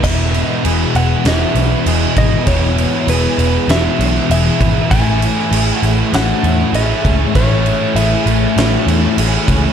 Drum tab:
CC |xxxxxxxx|xxxxxxxx|xxxxxxxx|xxxxxxxx|
SD |----o---|----o---|----o---|----o---|
BD |o------o|o------o|o------o|o------o|